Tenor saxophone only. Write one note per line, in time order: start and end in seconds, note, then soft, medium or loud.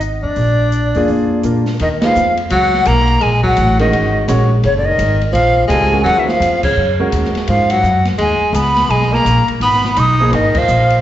0.23 1.39 D4 medium
1.81 1.91 D#3 medium
2.04 2.36 F3 medium
2.51 2.88 F#3 medium
2.86 3.22 A#3 medium
3.20 3.42 G#3 medium
3.43 3.77 F#3 medium
3.79 4.25 D#3 medium
4.64 4.75 C#3 medium
4.76 4.87 D3 medium
4.86 5.21 D#3 medium
5.32 5.67 F3 medium
5.68 6.02 G#3 medium
6.03 6.20 F#3 medium
6.18 6.28 E3 medium
6.26 6.63 F3 medium
6.63 7.09 C#3 medium
7.49 7.73 F3 medium
7.71 8.06 F#3 medium
8.18 8.56 G#3 medium
8.55 8.92 B3 medium
8.90 9.14 G#3 medium
9.13 9.48 A#3 medium
9.62 9.99 B3 medium
9.97 10.34 D#4 medium
10.33 10.58 D#3 medium
10.57 11.01 F3 medium